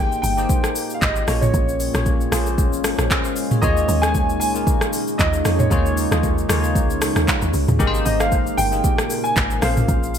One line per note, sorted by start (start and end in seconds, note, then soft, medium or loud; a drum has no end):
0.00 0.17 G#1 loud
0.00 3.58 A#2 medium
0.00 0.18 A#3 medium
0.00 1.26 A#3 medium
0.00 0.18 D#4 medium
0.00 0.19 G4 medium
0.00 0.19 G#4 medium
0.00 0.19 C5 loud
0.00 0.21 G5 loud
0.00 1.26 G5 medium
0.12 shaker soft
0.22 0.46 G1 medium
0.22 0.91 G5 loud
0.22 open hi-hat medium
0.22 shaker loud
0.37 1.10 A#3 medium
0.37 1.10 D#4 medium
0.37 1.10 G4 medium
0.37 1.11 G#4 medium
0.37 1.11 C5 medium
0.37 shaker medium
0.49 kick loud
0.49 shaker medium
0.64 cross-stick medium
0.64 shaker medium
0.75 open hi-hat medium
0.75 shaker loud
0.90 shaker medium
0.94 1.01 F5 medium
1.01 1.25 G#1 medium
1.01 1.43 D#5 medium
1.01 kick loud
1.01 clap medium
1.01 shaker medium
1.16 shaker medium
1.27 1.51 A#1 loud
1.27 7.76 G#3 medium
1.27 1.79 A#3 medium
1.27 3.60 C#4 medium
1.27 1.80 C#4 medium
1.27 1.80 F4 medium
1.27 1.80 G#4 medium
1.27 1.81 C#5 medium
1.27 cross-stick medium
1.27 open hi-hat soft
1.27 shaker medium
1.41 2.42 C#5 medium
1.41 mid tom medium
1.41 shaker medium
1.54 1.90 A#1 loud
1.54 kick loud
1.54 shaker medium
1.69 shaker medium
1.80 open hi-hat medium
1.80 shaker medium
1.93 2.28 A#1 loud
1.93 2.25 A#3 medium
1.93 2.25 C#4 medium
1.93 2.25 F4 medium
1.93 2.25 G#4 medium
1.93 2.26 C#5 medium
1.93 cross-stick medium
1.93 shaker medium
2.06 kick loud
2.06 shaker medium
2.21 shaker soft
2.31 2.60 A#1 loud
2.31 3.16 A#3 medium
2.31 3.16 C#4 medium
2.31 3.16 F4 medium
2.31 3.11 G#4 medium
2.31 3.11 C5 loud
2.31 cross-stick loud
2.31 open hi-hat medium
2.31 shaker loud
2.46 shaker medium
2.58 2.94 G#1 loud
2.58 kick loud
2.58 shaker medium
2.73 shaker medium
2.84 cross-stick loud
2.84 open hi-hat medium
2.84 shaker loud
2.99 3.09 A#1 medium
2.99 cross-stick medium
2.99 shaker medium
3.10 3.24 D#5 medium
3.10 3.24 G#5 medium
3.10 kick loud
3.10 clap loud
3.10 shaker medium
3.24 3.50 C5 medium
3.24 3.50 F5 medium
3.24 shaker medium
3.36 open hi-hat soft
3.36 shaker medium
3.51 3.62 G#4 medium
3.51 3.62 C#5 medium
3.51 mid tom medium
3.51 shaker medium
3.62 3.86 D#2 loud
3.62 7.76 C#3 medium
3.62 4.36 A#3 loud
3.62 4.36 D#4 medium
3.62 7.76 D#4 medium
3.62 4.36 F4 medium
3.62 4.36 G#4 medium
3.62 4.37 C#5 loud
3.62 4.04 D#5 loud
3.62 kick loud
3.62 shaker medium
3.77 shaker medium
3.89 4.42 D#2 loud
3.89 open hi-hat soft
3.89 shaker medium
4.02 4.38 G#5 loud
4.02 cross-stick medium
4.02 shaker medium
4.15 kick loud
4.15 shaker medium
4.29 shaker soft
4.40 4.64 C#2 medium
4.40 5.14 G#5 loud
4.40 open hi-hat medium
4.40 shaker loud
4.54 5.27 A#3 medium
4.54 5.27 D#4 medium
4.54 5.28 F4 medium
4.54 5.28 G#4 medium
4.54 5.28 A#4 medium
4.54 shaker medium
4.67 kick loud
4.67 shaker medium
4.81 cross-stick medium
4.81 shaker medium
4.93 open hi-hat medium
4.93 shaker loud
5.08 shaker medium
5.18 5.42 D#2 loud
5.18 5.60 D#5 medium
5.18 kick medium
5.18 clap medium
5.18 shaker medium
5.33 shaker medium
5.44 5.68 F2 loud
5.44 5.66 A#3 medium
5.44 5.66 D#4 medium
5.44 5.67 F4 medium
5.44 5.67 G#4 medium
5.44 5.67 C#5 medium
5.44 cross-stick medium
5.44 open hi-hat medium
5.44 shaker medium
5.59 6.60 C#5 medium
5.59 mid tom medium
5.59 shaker medium
5.70 6.07 D#2 loud
5.70 6.02 A#3 loud
5.70 6.03 D#4 medium
5.70 6.03 F4 medium
5.70 6.03 G#4 medium
5.70 6.03 C#5 loud
5.70 kick loud
5.70 shaker medium
5.86 shaker medium
5.97 open hi-hat medium
5.97 shaker medium
6.11 6.45 D#2 loud
6.11 6.42 A#3 medium
6.11 6.42 D#4 medium
6.11 6.42 F4 medium
6.11 6.43 G#4 medium
6.11 6.43 D#5 medium
6.11 cross-stick medium
6.11 shaker medium
6.23 kick loud
6.23 shaker medium
6.38 shaker soft
6.48 6.77 D#2 loud
6.48 7.33 A#3 loud
6.48 7.33 D#4 medium
6.48 7.33 F4 medium
6.48 7.34 G#4 medium
6.48 7.34 C#5 loud
6.48 cross-stick loud
6.48 open hi-hat medium
6.48 shaker loud
6.64 shaker medium
6.75 7.11 C#2 loud
6.75 kick loud
6.75 shaker medium
6.90 shaker medium
7.02 cross-stick loud
7.02 open hi-hat medium
7.02 shaker loud
7.16 7.26 D#2 medium
7.16 cross-stick medium
7.16 shaker medium
7.28 kick loud
7.28 clap medium
7.28 shaker medium
7.42 7.52 D#2 medium
7.42 shaker medium
7.53 7.66 C#2 loud
7.53 open hi-hat soft
7.53 shaker medium
7.68 7.79 D#2 medium
7.68 mid tom medium
7.68 shaker medium
7.79 8.03 G#1 loud
7.79 10.19 A#2 medium
7.79 8.53 A#3 loud
7.79 9.61 A#3 medium
7.79 8.53 D#4 loud
7.79 8.53 G4 loud
7.79 8.54 G#4 loud
7.79 9.61 A#4 medium
7.79 7.87 A#4 loud
7.79 kick loud
7.79 shaker medium
7.87 8.57 C5 loud
7.94 shaker medium
8.05 8.52 G#1 loud
8.05 8.19 D#5 medium
8.05 open hi-hat medium
8.05 shaker medium
8.20 8.59 F5 loud
8.20 cross-stick medium
8.20 shaker medium
8.32 kick medium
8.32 shaker medium
8.47 shaker soft
8.57 8.81 G1 medium
8.57 9.26 G5 loud
8.57 open hi-hat medium
8.57 shaker loud
8.72 9.45 A#3 medium
8.72 9.45 D#4 medium
8.72 9.45 G4 medium
8.72 9.45 G#4 medium
8.72 9.46 A#4 medium
8.72 shaker medium
8.84 kick loud
8.84 shaker medium
8.98 cross-stick loud
8.98 shaker medium
9.10 open hi-hat medium
9.10 shaker loud
9.24 9.63 G#5 loud
9.24 shaker medium
9.36 9.60 G#1 medium
9.36 kick loud
9.36 clap loud
9.36 shaker medium
9.50 shaker medium
9.61 9.85 A#1 loud
9.61 10.19 G#3 medium
9.61 10.14 A#3 medium
9.61 9.69 C4 medium
9.61 10.19 C#4 medium
9.61 10.15 F4 medium
9.61 10.15 G#4 medium
9.61 10.15 C5 medium
9.61 10.19 F5 medium
9.61 cross-stick medium
9.61 open hi-hat soft
9.61 shaker medium
9.68 10.17 C#4 medium
9.77 mid tom medium
9.77 shaker medium
9.88 10.19 A#1 loud
9.88 kick loud
9.88 shaker medium
10.03 shaker medium
10.15 open hi-hat medium
10.15 shaker medium